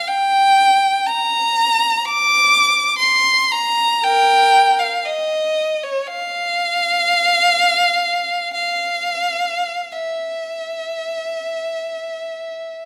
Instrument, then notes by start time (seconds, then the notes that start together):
violin
0.07 G5
1.07 A#5
2.05 D6
2.99 C6
3.51 A#5
4.03 A#4 G5
4.79 F5
5.05 D#5
5.83 C#5
6.07 F5
8.54 F5
9.92 E5